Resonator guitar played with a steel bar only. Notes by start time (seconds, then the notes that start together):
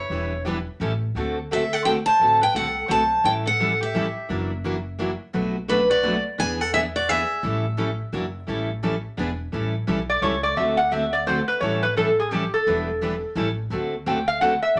Already playing: E4
1.53 A4
1.73 A4
1.85 C5
2.08 C5
2.41 B4
2.56 A4
2.88 C5
3.24 C#5
3.46 A4
3.81 G4
5.69 D4
5.90 F#4
6.38 B4
6.61 A4
6.73 G#4
6.96 F#4
7.09 G#4
10.10 D5
10.22 C#5
10.43 D5
10.57 E5
10.77 F#5
10.92 E5
11.13 D5
11.27 C5
11.48 B4
11.61 C#5
11.83 B4
11.97 A4
12.20 G#4
12.33 G4
12.54 A4
14.08 G5
14.28 F5
14.41 F#5
14.62 E5